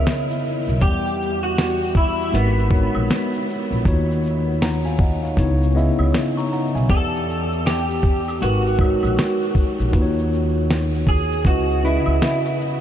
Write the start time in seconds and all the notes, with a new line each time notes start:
Already playing: C#3 B3 E4 A#4 C#5 D#5
0.05 snare, closed hi-hat, shaker
0.07 shaker
0.30 shaker
0.43 shaker
0.45 shaker
0.67 B1, shaker
0.81 E2 E3 G3 B3 G4 D5 F#5, kick, closed hi-hat, shaker
1.07 shaker
1.21 shaker
1.43 F#4
1.58 snare, closed hi-hat, shaker
1.82 shaker
1.95 E4, kick, shaker
2.20 shaker
2.32 G#1 G#3 D#4 F#4 A#4, closed hi-hat, shaker
2.35 B3 B4, shaker
2.59 shaker
2.70 G#3 D#4 F#4 A#4 C#5, kick, shaker
2.95 A#1, high woodblock
3.08 snare, closed hi-hat, shaker
3.11 shaker
3.34 shaker
3.46 shaker
3.49 shaker
3.71 A#1, shaker
3.85 D#2 D#3 D#4 F4 F#4 C#5, kick, closed hi-hat, shaker
4.11 shaker
4.24 shaker
4.26 shaker
4.61 F#5 A#5, snare, closed hi-hat, shaker
4.85 F5 G#5, shaker
4.99 D#5 F#5, kick, shaker
5.23 C#5 F5, shaker
5.37 C#2 C#3 B3 D#4, kick, closed hi-hat, shaker
5.38 E4 C#5, shaker
5.63 shaker
5.74 C#3 B3 E4 D#5 E5, shaker
5.98 C#2, high woodblock
6.12 snare, closed hi-hat, shaker
6.15 shaker
6.37 A#5 C#6, shaker
6.51 A#5, shaker
6.53 F#5, shaker
6.75 B1 E5 G#5, shaker
6.88 E2 E3 B3 G4 A4 D5 F#5, kick, closed hi-hat, shaker
7.15 shaker
7.28 shaker
7.30 shaker
7.52 shaker
7.66 G4, snare, closed hi-hat, shaker
7.68 shaker
7.90 shaker
8.03 kick, shaker
8.28 high woodblock, shaker
8.40 G#1 G#3 D#4 F#4, closed hi-hat, shaker
8.43 A#4 B4, shaker
8.67 shaker
8.79 G#3 D#4 F#4 A#4 C#5, kick, high woodblock, shaker
9.03 A#1, high woodblock, shaker
9.16 snare, closed hi-hat, shaker
9.19 shaker
9.42 shaker
9.54 kick, shaker
9.57 shaker
9.79 A#1, shaker
9.92 D#2 D#3 D#4 F4 F#4 B4, kick, closed hi-hat, shaker
10.02 C#5
10.19 shaker
10.32 shaker
10.34 shaker
10.70 snare, closed hi-hat, shaker
10.71 shaker
10.94 shaker
11.07 G#4, kick, shaker
11.32 shaker
11.44 C#2 C#3 C#4, kick, closed hi-hat, shaker
11.46 E4 F#4 B4 D#5, shaker
11.70 shaker
11.83 C#3 C#4 E4 B4 D#5, shaker
12.06 C#2, high woodblock
12.20 snare, closed hi-hat, shaker
12.23 shaker
12.45 shaker
12.58 shaker
12.61 shaker